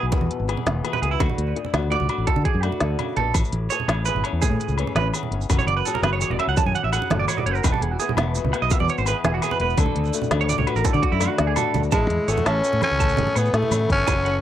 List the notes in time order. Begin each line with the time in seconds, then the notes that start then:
Already playing: E2 B2 E3 B3 G#4
0.03 B1
0.12 E2, kick, closed hi-hat, high conga
0.21 E2, low conga
0.31 closed hi-hat
0.40 G#1
0.48 E3 G#4, closed hi-hat, low agogo
0.57 low conga
0.66 E1, muted nylon-string guitar stroke, snare, closed hi-hat, high conga
0.84 B2 G#4, closed hi-hat, low agogo
0.93 B4, low conga
1.02 C#2 B3 G#4, closed hi-hat
1.11 E4, low conga
1.20 D2 D3 F#4, kick, closed hi-hat, high conga, low agogo
1.29 low conga
1.38 D2, closed hi-hat
1.47 low conga
1.55 A3, muted nylon-string guitar stroke, closed hi-hat
1.65 low conga
1.73 D2 F#4, snare, closed hi-hat, high conga, low agogo
1.83 low conga
1.90 A2 F#4 D5, closed hi-hat
2.00 C#2, low conga
2.09 F#4, closed hi-hat, low agogo
2.18 A1
2.27 A4, muted nylon-string guitar stroke, kick, closed hi-hat, high conga, low conga
2.36 D3, low conga
2.45 G#4, kick, closed hi-hat, low conga
2.54 F#2, low conga
2.63 A3 D4 F#4, closed hi-hat, low conga, low agogo
2.72 low conga
2.80 D2 D3, snare, closed hi-hat, high conga
2.99 C#3, closed hi-hat, low conga, low agogo
3.17 A#1 B2 A4, closed hi-hat, low conga
3.34 A1 A2, kick, closed hi-hat, high conga, low agogo, maracas
3.44 maracas
3.53 A1, closed hi-hat, low conga
3.70 E3 G#4 C#5, closed hi-hat, maracas
3.80 low conga
3.88 A1 C#4, snare, closed hi-hat, high conga, low agogo
4.05 E2 G#4 B4, closed hi-hat, maracas
4.15 G#1, low conga
4.24 C#4, muted clean electric guitar stroke, closed hi-hat, low agogo
4.33 E2
4.42 A2 G#4, kick, closed hi-hat, high conga, maracas
4.50 A2, low conga
4.60 closed hi-hat, maracas
4.68 C#2, maracas
4.78 E3 C#4, closed hi-hat, low agogo
4.87 low conga
4.95 A1 C#4 B4, snare, closed hi-hat, high conga
5.14 E2 G#4, closed hi-hat, low agogo, maracas
5.23 low conga
5.31 G1 C#4, closed hi-hat
5.41 low conga, maracas
5.50 F#1 F#2, kick, closed hi-hat, high conga, low agogo, maracas
5.59 C#5, low conga, maracas
5.66 F#1 D5, closed hi-hat
5.77 B4
5.85 F#3 G#4 A4, closed hi-hat, maracas
5.94 A#4, low conga
6.02 F#1 C#4 B4, snare, closed hi-hat, high conga, low agogo
6.13 C#5
6.20 G#4 C#5, muted nylon-string guitar stroke, closed hi-hat, maracas
6.30 E1 D5, low conga
6.39 C#4 E5, closed hi-hat, low conga, low agogo
6.47 C#2 F#5
6.57 F#2 A5, kick, closed hi-hat, high conga, maracas
6.65 F#2 G#5, low conga
6.75 F#5, closed hi-hat, maracas
6.83 A1 E5
6.93 F#3 G#4 F#5, closed hi-hat, low agogo, maracas
7.02 low conga
7.10 F#1 A2, snare, closed hi-hat, high conga
7.19 D5
7.28 G#2 C#5, closed hi-hat, low agogo, maracas
7.37 D5, low conga
7.46 F#1 F#2 C#5, closed hi-hat
7.55 A#4, low conga, maracas
7.63 E1 E2 B4, kick, closed hi-hat, high conga, low agogo, maracas
7.72 A4, low conga
7.81 E1 G#4, closed hi-hat, low conga
7.91 F#4
7.99 E3 B3 G#4, closed hi-hat, maracas
8.09 low conga
8.17 E1 B3, snare, closed hi-hat, high conga, low agogo
8.35 B2 G#4, closed hi-hat, maracas
8.44 C#2, low conga
8.53 B3, muted clean electric guitar stroke, closed hi-hat, low conga, low agogo
8.62 B1 D#5
8.70 E2 E5, kick, closed hi-hat, high conga, maracas
8.80 E2 D5, low conga
8.88 C#5, closed hi-hat, maracas
8.98 G#1 C5, maracas
9.06 E3 G#4 B4, closed hi-hat, low agogo, maracas
9.24 E1 B3 G#4, snare, closed hi-hat, high conga
9.34 F#4
9.42 B2 B3 G#4, closed hi-hat, low agogo, maracas
9.51 B4, low conga
9.60 E1 B3 B4, closed hi-hat
9.69 low conga, maracas
9.77 D2 D3 A4, kick, closed hi-hat, high conga, low conga, low agogo, maracas
9.86 low conga
9.95 D2, closed hi-hat, low conga
10.04 low conga, maracas
10.14 A3 F#4, closed hi-hat, maracas
10.22 low conga, maracas
10.31 D2 F#4, snare, closed hi-hat, high conga, low conga, low agogo
10.41 C#5
10.49 A2 F#4 D5, closed hi-hat, maracas
10.58 C#2 C#5, low conga
10.67 F#4 B4, closed hi-hat, low agogo
10.75 A1 A#4, low conga, maracas
10.84 D3 A4, kick, closed hi-hat, high conga, low conga, maracas
10.93 D3 D5, low conga
11.02 F#4, kick, closed hi-hat, high conga
11.12 F#2 E4
11.20 A3 D4 F#4, snare, closed hi-hat, high conga, low agogo, maracas
11.38 D2 D4, snare, closed hi-hat, high conga
11.47 G#4
11.56 A2 F#4 A4, closed hi-hat, low conga, low agogo, maracas
11.74 D2 F#4, closed hi-hat, low conga, maracas
11.83 maracas
11.92 A1 A2 G#3 E4 A5, kick, closed hi-hat, high conga, low conga, low agogo, maracas
12.10 E2 G#4, closed hi-hat, low conga
12.28 G#1 E3 A3 F#4 G#4 C#5, closed hi-hat, maracas
12.37 E2, high conga, low conga
12.46 A1 C#4 A4 A5, snare, closed hi-hat, low agogo, maracas
12.64 E2 C#4, closed hi-hat, low conga, maracas
12.73 A2, low conga
12.82 C#4 A4, closed hi-hat, high conga, low agogo
12.91 C#2, low conga
13.00 A2 A5, kick, closed hi-hat, maracas
13.09 maracas
13.17 G#1 G#4, closed hi-hat, low conga
13.27 high conga
13.35 A2 E3 B3 G#4 C#5, closed hi-hat, low conga, low agogo, maracas
13.45 maracas
13.53 A2 A3 E4 G#4, snare, closed hi-hat
13.63 low conga
13.71 E2 A2 C#4, closed hi-hat, high conga, low agogo, maracas
13.80 low conga
13.90 G1 C#4 G#4, kick, closed hi-hat
13.94 A4
13.99 low conga
14.07 F#1 F#2 G#5, kick, closed hi-hat, high conga, low conga, low agogo, maracas
14.25 C#4 F#5, closed hi-hat, low conga